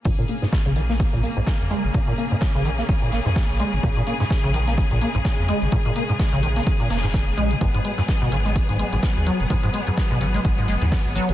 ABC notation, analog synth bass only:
X:1
M:4/4
L:1/16
Q:"Swing 16ths" 1/4=127
K:Bbphr
V:1 name="Analog synth bass" clef=bass
B,,, z4 B,,,3 z B,,, z B,,, z F,, z A,,, | z4 z B,,,2 z B,,, z A,,, F,, z B,,, z A,,, | B,,, z4 B,,,3 z B,,, z B,,, z F,, z A,,, | z4 z B,,,2 z3 F,,,3 z B,,, z |
A,,, z4 A,,,3 z A,,, z A,,, z E,, z G,,, | z4 z A,,,2 z A,,, z G,,, E,, z A,,, z G,,, |]